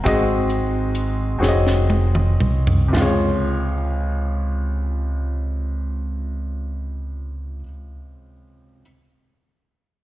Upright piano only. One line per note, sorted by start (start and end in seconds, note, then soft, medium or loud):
0.04 1.36 G#2 medium
0.04 1.09 C4 medium
0.04 1.09 F#4 medium
0.04 1.10 G#4 medium
0.04 1.11 D#5 medium
1.39 2.58 C4 medium
1.39 2.59 F#4 medium
1.39 2.59 G#4 medium
1.39 1.50 C#5 medium
1.48 2.63 D#5 medium
2.88 7.56 C3 medium
2.93 7.62 C#2 medium
2.93 7.60 F4 medium
2.97 7.65 G#4 medium
3.01 7.69 C#5 medium